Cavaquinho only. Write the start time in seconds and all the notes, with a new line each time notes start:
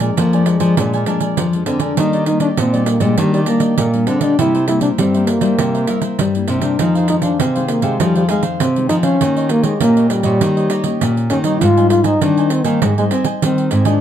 0.00 A#4 D5 G#5
0.17 D4 A#4 D5 G#5
0.33 A#4 D5 G#5
0.60 A#4 D5 G#5
0.78 D4 A#4 D5 G#5
0.94 A#4 D5 G#5
1.07 D4 A#4 D5 G#5
1.21 A#4 D5 G#5
1.54 muted cavaquinho stroke
1.67 D4 A#4 D5 G#5
1.80 A#4 D5 G#5
1.97 D4 G4 D5 D#5
2.13 G4 D5 D#5
2.26 muted cavaquinho stroke
2.40 G4 D5 D#5
2.58 D4 G4 D5 D#5
2.73 G4 D5 D#5
3.00 G4 D5 D#5
3.17 D4 G4 D5 D#5
3.34 G4 D5 D#5
3.46 D4 G4 D5 D#5
3.60 G4 D5 D#5
3.94 muted cavaquinho stroke
4.07 D4 G4 D5 D#5
4.21 G4 D5 D#5
4.38 E4 A#4 C5 E5
4.54 A#4 C5 E5
4.67 muted cavaquinho stroke
4.81 A#4 C5 E5
4.99 E4 A#4 C5 E5
5.15 A#4 C5 E5
5.41 A#4 C5 E5
5.59 E4 A#4 C5 E5
5.74 A#4 C5 E5
5.87 E4 A#4 C5 E5
6.02 A#4 C5 E5
6.35 muted cavaquinho stroke
6.47 E4 A#4 C5 E5
6.62 A#4 C5 E5
6.79 D#4 G#4 C5 F5
6.95 G#4 C5 F5
7.09 muted cavaquinho stroke
7.22 G#4 C5 F5
7.40 D#4 G#4 C5 F5
7.55 G#4 C5 F5
7.82 G#4 C5 F5
7.99 D#4 G#4 C5 F5
8.15 G#4 C5 F5
8.28 D#4 G#4 C5 F5
8.43 G#4 C5 F5
8.77 muted cavaquinho stroke
8.89 D#4 G#4 C5 F5
9.03 G#4 C5 F5
9.21 D#4 G4 C#5 D#5
9.37 G4 C#5 D#5
9.50 muted cavaquinho stroke
9.63 G4 C#5 D#5
9.80 D#4 G4 C#5 D#5
9.97 G4 C#5 D#5
10.24 G4 C#5 D#5
10.41 D#4 G4 C#5 D#5
10.57 G4 C#5 D#5
10.70 D#4 G4 C#5 D#5
10.83 G4 C#5 D#5
11.17 muted cavaquinho stroke
11.30 D#4 G4 C#5 D#5
11.45 G4 C#5 D#5
11.61 G4 C5 D#5 G#5
11.77 C5 D#5 G#5
11.90 muted cavaquinho stroke
12.04 C5 D#5 G#5
12.21 G4 C5 D#5 G#5
12.38 C5 D#5 G#5
12.65 C5 D#5 G#5
12.82 G4 C5 D#5 G#5
12.98 C5 D#5 G#5
13.11 G4 C5 D#5 G#5
13.25 C5 D#5 G#5
13.60 muted cavaquinho stroke
13.72 G4 C5 D#5 G#5
13.85 C5 D#5 G#5